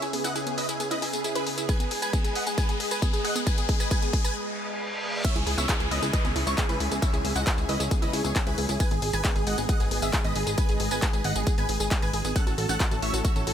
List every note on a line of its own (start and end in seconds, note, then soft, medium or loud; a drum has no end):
0.00 1.65 C#3 medium
0.00 1.65 C#4 medium
0.00 0.08 E4 loud
0.00 0.11 G#4 medium
0.00 5.21 B4 medium
0.00 1.65 E5 medium
0.00 closed hi-hat medium
0.00 tambourine soft
0.00 riser medium
0.13 0.17 B3 medium
0.13 0.22 G#4 medium
0.13 open hi-hat loud
0.24 0.31 E4 loud
0.24 0.33 D#5 medium
0.24 0.33 F#5 loud
0.24 0.33 F#5 medium
0.24 closed hi-hat medium
0.24 tambourine medium
0.35 0.42 E4 loud
0.35 0.44 G#4 medium
0.35 closed hi-hat medium
0.35 tambourine soft
0.47 0.50 B3 medium
0.47 0.56 G#4 medium
0.47 closed hi-hat medium
0.47 tambourine soft
0.58 0.64 E4 loud
0.58 0.67 B4 medium
0.58 0.67 D#5 medium
0.58 0.67 D#5 loud
0.58 open hi-hat medium
0.69 0.75 E4 loud
0.69 0.78 G#4 medium
0.69 closed hi-hat medium
0.69 tambourine medium
0.80 0.84 B3 medium
0.80 0.89 G#4 medium
0.80 closed hi-hat medium
0.80 tambourine soft
0.91 0.97 E4 loud
0.91 1.00 B4 medium
0.91 1.00 D#5 loud
0.91 1.00 D#5 medium
0.91 closed hi-hat medium
0.91 tambourine soft
1.02 1.08 E4 loud
1.02 1.11 G#4 medium
1.02 open hi-hat loud
1.13 1.17 B3 medium
1.13 1.22 G#4 medium
1.13 closed hi-hat medium
1.13 tambourine medium
1.24 1.31 E4 loud
1.24 1.33 G#4 medium
1.24 closed hi-hat medium
1.24 tambourine soft
1.35 1.42 E4 loud
1.35 1.44 G#4 medium
1.35 1.44 B4 loud
1.35 closed hi-hat medium
1.35 tambourine soft
1.47 1.50 B3 medium
1.47 1.56 G#4 medium
1.47 open hi-hat loud
1.58 1.64 E4 loud
1.58 1.67 G#4 medium
1.58 closed hi-hat medium
1.58 tambourine medium
1.69 5.21 G#3 medium
1.69 1.75 G#4 loud
1.69 5.21 G#4 medium
1.69 1.78 B4 medium
1.69 5.21 D#5 medium
1.69 1.78 G#5 medium
1.69 kick loud
1.69 closed hi-hat medium
1.69 tambourine medium
1.80 1.84 B3 medium
1.80 1.89 G#4 medium
1.80 closed hi-hat medium
1.80 tambourine soft
1.91 2.00 G#4 medium
1.91 1.97 G#4 medium
1.91 2.00 G#4 medium
1.91 open hi-hat loud
2.02 2.08 G#4 medium
2.02 2.11 B4 medium
2.02 2.11 G#5 medium
2.02 closed hi-hat medium
2.02 tambourine medium
2.13 2.17 B3 medium
2.13 2.22 G#4 medium
2.13 kick loud
2.13 closed hi-hat medium
2.13 tambourine medium
2.24 2.33 G#4 medium
2.24 2.31 G#4 medium
2.24 2.34 G#4 medium
2.24 closed hi-hat medium
2.24 tambourine soft
2.35 2.42 G#4 medium
2.35 2.45 D#5 medium
2.35 2.44 F#5 medium
2.35 2.45 F#5 medium
2.35 open hi-hat loud
2.47 2.50 B3 medium
2.47 2.56 G#4 medium
2.47 closed hi-hat medium
2.47 tambourine medium
2.58 2.64 G#4 loud
2.58 2.67 B4 medium
2.58 2.67 G#5 medium
2.58 kick loud
2.58 closed hi-hat medium
2.58 tambourine medium
2.69 2.73 B3 medium
2.69 2.78 G#4 medium
2.69 closed hi-hat medium
2.69 tambourine soft
2.80 2.86 G#4 loud
2.80 2.89 G#4 medium
2.80 open hi-hat loud
2.91 2.97 G#4 medium
2.91 3.00 B4 medium
2.91 3.00 G#5 medium
2.91 closed hi-hat medium
2.91 tambourine medium
3.02 3.06 B3 medium
3.02 3.11 G#4 medium
3.02 kick loud
3.02 closed hi-hat medium
3.02 tambourine medium
3.13 3.22 G#4 medium
3.13 3.20 G#4 medium
3.13 3.22 G#4 medium
3.13 closed hi-hat medium
3.13 tambourine soft
3.24 3.31 G#4 loud
3.24 3.33 D#5 medium
3.24 3.33 F#5 medium
3.24 open hi-hat loud
3.36 3.39 B3 medium
3.36 3.44 G#4 medium
3.36 3.45 G#4 medium
3.36 closed hi-hat medium
3.36 tambourine medium
3.47 3.53 G#4 loud
3.47 3.56 B4 medium
3.47 3.56 G#5 loud
3.47 kick loud
3.47 closed hi-hat medium
3.47 tambourine medium
3.58 3.62 B3 medium
3.58 3.67 G#4 medium
3.58 closed hi-hat medium
3.58 tambourine soft
3.69 3.75 G#4 loud
3.69 3.78 G#4 medium
3.69 kick loud
3.69 open hi-hat loud
3.80 3.86 G#4 loud
3.80 3.89 B4 medium
3.80 3.89 G#5 medium
3.80 closed hi-hat medium
3.80 tambourine medium
3.91 3.97 G#4 loud
3.91 4.00 B4 medium
3.91 4.00 G#5 loud
3.91 kick loud
3.91 closed hi-hat medium
3.91 tambourine medium
4.02 4.06 B3 medium
4.02 4.11 G#4 medium
4.02 closed hi-hat medium
4.02 tambourine soft
4.13 4.22 G#4 medium
4.13 4.20 G#4 loud
4.13 4.22 G#4 medium
4.13 kick loud
4.13 open hi-hat loud
4.24 4.31 G#4 loud
4.24 4.33 B4 medium
4.24 4.33 G#5 medium
4.24 closed hi-hat medium
4.24 tambourine medium
4.36 reverse cymbal medium
5.24 5.28 B3 medium
5.24 8.77 C#4 medium
5.24 12.32 G#4 medium
5.24 7.00 B4 medium
5.24 5.34 C#5 medium
5.24 5.33 E5 loud
5.24 8.76 E5 medium
5.24 5.33 E5 loud
5.24 kick loud
5.24 closed hi-hat loud
5.24 tambourine medium
5.24 crash loud
5.24 downlifter medium
5.35 5.44 C#2 medium
5.35 5.42 E4 loud
5.35 5.44 G#4 medium
5.35 5.45 G#4 medium
5.35 closed hi-hat soft
5.35 tambourine soft
5.47 5.55 C#2 loud
5.47 5.53 E4 loud
5.47 5.56 G#4 medium
5.47 open hi-hat loud
5.58 5.66 C#2 loud
5.58 5.62 B3 medium
5.58 5.67 C#5 medium
5.58 5.67 E5 medium
5.58 closed hi-hat soft
5.58 tambourine medium
5.69 5.75 E4 loud
5.69 5.78 G#4 medium
5.69 kick loud
5.69 clap loud
5.69 closed hi-hat loud
5.69 tambourine soft
5.80 5.89 C#2 medium
5.80 5.86 E4 loud
5.80 5.89 G#4 medium
5.80 closed hi-hat soft
5.80 tambourine soft
5.91 6.00 C#2 loud
5.91 5.95 B3 medium
5.91 6.00 B4 medium
5.91 6.00 D#5 medium
5.91 open hi-hat loud
6.02 6.11 C#2 medium
6.02 6.08 E4 loud
6.02 6.11 G#4 medium
6.02 closed hi-hat soft
6.02 tambourine medium
6.13 6.20 E4 loud
6.13 6.22 B4 medium
6.13 6.22 D#5 medium
6.13 kick loud
6.13 closed hi-hat loud
6.13 tambourine medium
6.24 6.33 C#2 medium
6.24 6.28 B3 medium
6.24 6.33 G#4 medium
6.24 6.34 G#4 medium
6.24 closed hi-hat soft
6.24 tambourine soft
6.36 6.44 C#2 loud
6.36 6.42 E4 loud
6.36 6.45 G#4 medium
6.36 open hi-hat loud
6.47 6.55 C#2 medium
6.47 6.53 E4 loud
6.47 6.56 E4 medium
6.47 6.56 C#5 medium
6.47 closed hi-hat soft
6.47 tambourine medium
6.58 6.62 B3 medium
6.58 6.67 G#4 medium
6.58 kick loud
6.58 clap loud
6.58 closed hi-hat loud
6.58 tambourine medium
6.69 6.78 C#2 medium
6.69 6.75 E4 loud
6.69 6.78 G#4 medium
6.69 6.78 B4 medium
6.69 6.78 B4 loud
6.69 closed hi-hat soft
6.69 tambourine soft
6.80 6.89 C#2 loud
6.80 6.86 E4 loud
6.80 6.89 G#4 medium
6.80 open hi-hat loud
6.91 7.00 C#2 medium
6.91 6.95 B3 medium
6.91 7.00 G#4 medium
6.91 closed hi-hat soft
6.91 tambourine medium
7.02 7.09 E4 loud
7.02 8.78 C#5 medium
7.02 7.11 C#5 medium
7.02 7.11 E5 medium
7.02 kick loud
7.02 closed hi-hat loud
7.02 tambourine medium
7.13 7.22 C#2 medium
7.13 7.20 E4 loud
7.13 7.22 G#4 medium
7.13 closed hi-hat soft
7.13 tambourine soft
7.24 7.33 C#2 loud
7.24 7.28 B3 medium
7.24 7.33 G#4 medium
7.24 open hi-hat loud
7.35 7.44 C#2 loud
7.35 7.42 E4 loud
7.35 7.44 D#5 medium
7.35 7.44 F#5 loud
7.35 closed hi-hat soft
7.35 tambourine medium
7.47 7.53 E4 loud
7.47 7.56 G#4 medium
7.47 kick loud
7.47 clap loud
7.47 closed hi-hat medium
7.47 tambourine medium
7.58 7.66 C#2 medium
7.58 7.62 B3 medium
7.58 7.67 G#4 medium
7.58 closed hi-hat soft
7.58 tambourine soft
7.69 7.78 C#2 loud
7.69 7.75 E4 loud
7.69 7.78 B4 medium
7.69 7.78 D#5 medium
7.69 7.78 D#5 loud
7.69 open hi-hat loud
7.80 7.89 C#2 medium
7.80 7.86 E4 loud
7.80 7.89 G#4 medium
7.80 closed hi-hat soft
7.80 tambourine medium
7.91 7.95 B3 medium
7.91 8.00 G#4 medium
7.91 kick loud
7.91 closed hi-hat loud
7.91 tambourine medium
8.02 8.11 C#2 medium
8.02 8.08 E4 loud
8.02 8.11 B4 medium
8.02 8.11 D#5 medium
8.02 closed hi-hat soft
8.02 tambourine soft
8.13 8.22 C#2 medium
8.13 8.20 E4 loud
8.13 8.22 G#4 medium
8.13 open hi-hat loud
8.24 8.33 C#2 medium
8.24 8.28 B3 medium
8.24 8.33 G#4 medium
8.24 closed hi-hat soft
8.24 tambourine medium
8.35 8.42 E4 loud
8.35 8.44 G#4 medium
8.35 kick loud
8.35 clap loud
8.35 closed hi-hat loud
8.35 tambourine medium
8.47 8.55 C#2 medium
8.47 8.53 E4 loud
8.47 8.56 G#4 medium
8.47 8.56 B4 medium
8.47 8.56 B4 loud
8.47 closed hi-hat soft
8.47 tambourine soft
8.58 8.66 C#2 loud
8.58 8.62 B3 medium
8.58 8.67 G#4 medium
8.58 open hi-hat loud
8.69 8.78 C#2 medium
8.69 8.75 E4 loud
8.69 8.78 G#4 medium
8.69 closed hi-hat soft
8.69 tambourine medium
8.80 12.32 G#3 medium
8.80 8.86 G#4 loud
8.80 12.32 B4 medium
8.80 8.89 B4 medium
8.80 12.32 D#5 medium
8.80 8.89 G#5 loud
8.80 kick loud
8.80 closed hi-hat medium
8.80 tambourine medium
8.91 9.00 G#1 medium
8.91 8.95 B3 medium
8.91 9.00 G#4 medium
8.91 closed hi-hat soft
8.91 tambourine soft
9.02 9.11 G#1 loud
9.02 9.11 G#4 medium
9.02 9.08 G#4 loud
9.02 9.11 G#4 medium
9.02 open hi-hat loud
9.13 9.22 G#1 medium
9.13 9.20 G#4 loud
9.13 9.22 B4 medium
9.13 9.22 G#5 loud
9.13 closed hi-hat soft
9.13 tambourine medium
9.25 9.28 B3 medium
9.25 9.33 G#4 medium
9.25 9.34 G#4 medium
9.25 kick loud
9.25 clap loud
9.25 closed hi-hat medium
9.25 tambourine medium
9.36 9.44 G#1 medium
9.36 9.42 G#4 loud
9.36 9.45 G#4 medium
9.36 closed hi-hat soft
9.36 tambourine soft
9.47 9.55 G#1 loud
9.47 9.53 G#4 loud
9.47 9.56 D#5 medium
9.47 9.56 F#5 medium
9.47 open hi-hat loud
9.58 9.67 G#1 medium
9.58 9.62 B3 medium
9.58 9.67 G#4 medium
9.58 closed hi-hat soft
9.58 tambourine medium
9.69 9.75 G#4 loud
9.69 9.78 D#5 medium
9.69 9.78 F#5 medium
9.69 kick loud
9.69 closed hi-hat medium
9.69 tambourine medium
9.80 9.89 G#1 medium
9.80 9.86 G#4 loud
9.80 9.89 G#4 medium
9.80 closed hi-hat soft
9.80 tambourine soft
9.91 10.00 G#1 medium
9.91 9.95 B3 medium
9.91 10.00 G#4 medium
9.91 open hi-hat loud
10.02 10.11 G#1 medium
10.02 10.08 G#4 loud
10.02 10.11 G#4 medium
10.02 10.11 E5 medium
10.02 closed hi-hat soft
10.02 tambourine medium
10.13 10.22 G#4 medium
10.13 10.20 G#4 loud
10.13 kick loud
10.13 clap loud
10.13 closed hi-hat medium
10.13 tambourine medium
10.24 10.33 G#1 medium
10.24 10.28 B3 medium
10.24 10.33 B4 medium
10.24 10.33 D#5 loud
10.24 closed hi-hat soft
10.24 tambourine soft
10.36 10.44 G#1 loud
10.36 10.45 G#4 medium
10.36 10.42 G#4 loud
10.36 10.45 G#4 medium
10.36 open hi-hat loud
10.47 10.55 G#1 medium
10.47 10.56 G#4 medium
10.47 10.53 G#4 loud
10.47 10.56 G#4 medium
10.47 closed hi-hat soft
10.47 tambourine medium
10.58 10.62 B3 medium
10.58 10.67 B4 medium
10.58 10.67 G#5 medium
10.58 kick loud
10.58 closed hi-hat medium
10.58 tambourine medium
10.69 10.78 G#1 medium
10.69 10.78 G#4 medium
10.69 10.75 G#4 loud
10.69 10.78 G#4 medium
10.69 closed hi-hat soft
10.69 tambourine soft
10.80 10.89 G#1 loud
10.80 10.89 G#4 medium
10.80 10.86 G#4 loud
10.80 10.89 G#4 medium
10.80 open hi-hat loud
10.91 11.00 G#1 medium
10.91 10.95 B3 medium
10.91 11.00 B4 medium
10.91 11.00 G#5 medium
10.91 closed hi-hat soft
10.91 tambourine medium
11.02 11.11 G#4 medium
11.02 11.09 G#4 loud
11.02 11.11 G#4 medium
11.02 kick loud
11.02 clap loud
11.02 closed hi-hat medium
11.02 tambourine medium
11.13 11.22 G#1 medium
11.13 11.22 G#4 medium
11.13 11.20 G#4 loud
11.13 closed hi-hat soft
11.13 tambourine soft
11.24 11.33 G#1 loud
11.24 11.28 B3 medium
11.24 11.34 D#5 medium
11.24 11.33 F#5 loud
11.24 11.34 F#5 loud
11.24 open hi-hat loud
11.36 11.44 G#1 medium
11.36 11.42 G#4 loud
11.36 11.45 G#4 medium
11.36 closed hi-hat soft
11.36 tambourine medium
11.47 11.56 G#4 medium
11.47 11.53 G#4 loud
11.47 11.56 G#4 medium
11.47 kick loud
11.47 closed hi-hat medium
11.47 tambourine medium
11.58 11.66 G#1 medium
11.58 11.62 B3 medium
11.58 11.67 B4 medium
11.58 11.67 G#5 loud
11.58 closed hi-hat soft
11.58 tambourine soft
11.69 11.78 G#1 medium
11.69 11.75 G#4 loud
11.69 11.78 G#4 medium
11.69 open hi-hat loud
11.80 11.89 G#1 medium
11.80 11.86 G#4 loud
11.80 11.89 G#4 medium
11.80 closed hi-hat soft
11.80 tambourine medium
11.91 11.95 B3 medium
11.91 12.00 G#4 medium
11.91 kick loud
11.91 clap loud
11.91 closed hi-hat medium
11.91 tambourine medium
12.02 12.11 G#1 medium
12.02 12.09 G#4 loud
12.02 12.11 B4 medium
12.02 12.11 G#5 loud
12.02 closed hi-hat soft
12.02 tambourine soft
12.13 12.22 G#1 loud
12.13 12.22 G#4 medium
12.13 12.20 G#4 loud
12.13 12.22 G#4 medium
12.13 open hi-hat loud
12.24 12.33 G#1 medium
12.24 12.28 B3 medium
12.24 12.33 G#4 medium
12.24 closed hi-hat soft
12.24 tambourine medium
12.36 13.54 A3 medium
12.36 12.39 C#4 medium
12.36 13.54 E4 medium
12.36 13.54 F#4 medium
12.36 12.45 A4 medium
12.36 13.54 C#5 medium
12.36 12.45 F#5 loud
12.36 kick loud
12.36 closed hi-hat medium
12.36 tambourine medium
12.47 12.55 A1 medium
12.47 12.53 F#4 loud
12.47 12.56 A4 medium
12.47 closed hi-hat soft
12.47 tambourine soft
12.58 12.66 A1 loud
12.58 12.64 F#4 loud
12.58 12.67 A4 medium
12.58 open hi-hat loud
12.69 12.78 A1 medium
12.69 12.73 C#4 medium
12.69 12.78 A4 medium
12.69 12.78 F#5 loud
12.69 12.78 F#5 medium
12.69 closed hi-hat soft
12.69 tambourine medium
12.80 12.86 F#4 loud
12.80 12.89 A4 medium
12.80 kick loud
12.80 clap loud
12.80 closed hi-hat medium
12.80 tambourine medium
12.91 13.00 A1 medium
12.91 12.97 F#4 loud
12.91 13.00 A4 medium
12.91 closed hi-hat soft
12.91 tambourine soft
13.02 13.11 A1 loud
13.02 13.06 C#4 medium
13.02 13.11 C#5 medium
13.02 13.11 E5 medium
13.02 open hi-hat medium
13.13 13.22 A1 medium
13.13 13.20 F#4 loud
13.13 13.22 A4 medium
13.13 closed hi-hat soft
13.13 tambourine medium
13.25 13.31 F#4 loud
13.25 13.33 C#5 medium
13.25 13.33 E5 medium
13.25 kick loud
13.25 closed hi-hat medium
13.25 tambourine medium
13.36 13.44 A1 medium
13.36 13.39 C#4 medium
13.36 13.44 A4 medium
13.36 13.45 A4 medium
13.36 closed hi-hat soft
13.36 tambourine soft
13.47 13.54 A1 loud
13.47 13.53 F#4 loud
13.47 13.54 A4 medium
13.47 open hi-hat loud